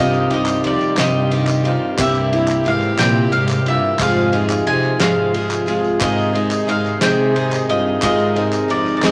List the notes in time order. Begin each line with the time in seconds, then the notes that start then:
Already playing: C2 C3 D#3 G3 C4 F4 G4
0.00 C2 G2 C3 D#4 G4 C5 D#5
0.14 clap, tambourine
0.30 G2 C4 D#4 G4 D#5, ride
0.46 clap, tambourine
0.64 F2 D#3 C4 D#4 G4 D5, clap, ride
0.80 clap, tambourine
0.97 G2 C3 D#3 G3 C4 D#4 G4 C5 D#5 F5, snare, clap, ride, tambourine
1.31 D#3 C4 D#4 G4, ride
1.47 clap, tambourine
1.64 C4 D#4 F4 G4, ride
1.97 C2 G2 C3 G3 A#3 C4 E4 G4 A#4 C5 E5, kick, clap, ride, tambourine
2.01 E4 G4
2.15 clap, tambourine
2.33 E4 G4, ride
2.37 A#3
2.48 clap, tambourine
2.65 G#2 E3 G3 A#3 F5, clap, ride
2.70 G4
2.81 clap, tambourine
2.97 C3 G3 C4 E4 G4 A#4 C5 G5, snare, clap, ride, tambourine
3.01 A#2 C3 G3 A#3 E4
3.32 G#2 G3 A#3 G4 F5, ride
3.48 clap, tambourine
3.66 G2 A#3 E4 F4 G4 E5, ride
3.98 F1 F2 G#2 C3 F3 G#3 C4 F4 G#4 C5 F5, kick, clap, ride, tambourine
4.17 clap
4.32 F3 G#3 D#4 F4 G#4, clap, ride
4.50 clap, tambourine
4.67 C3 F3 G#3 D#4 F4 G#4 G#5, ride
4.84 clap
4.98 F3 G#3 C4 F4 G#4 C5 F5, snare, clap, ride, tambourine
5.02 F2 G#2 C3 F3
5.34 F3 G#3 F4 G#4, ride
5.50 clap, tambourine
5.66 F3 G#3 F4 G#4, ride, tambourine
5.84 tambourine
5.98 G#1 G#2 C3 D#3 G#3 C4 D#4 F4 C5 D#5, kick, clap, ride, tambourine
6.03 G#2 G#4
6.18 tambourine
6.33 G#3 C4 D#4 G#4, ride
6.51 clap, tambourine
6.67 G#3 C4 D#4 G#4 F5, clap, ride
6.71 G#2
6.86 clap, tambourine
7.01 G#2 C3 D#3 G#3 C4 D#4 G#4 C5 D#5 G5, snare, clap, ride, tambourine
7.35 G#3 C4 D#4 G#4, ride
7.53 clap, tambourine
7.69 G2 C4 D#4 F4 G#4 D#5, ride
8.02 G#1 G#2 D#3 G#3 C4 D#4 F4 G#4 A#4 C5 D#5, kick, clap, ride, tambourine
8.19 clap, tambourine
8.35 G#3 C4 D#4 G#4, ride
8.53 clap, tambourine
8.68 F2 G#3 C4 D#4 D5, clap, ride
8.72 G#4
8.87 clap, tambourine
8.96 F2 D5
9.02 G#2 D#3 G#3 C4 D#4 G#4 C5 D#5, snare, clap, ride, tambourine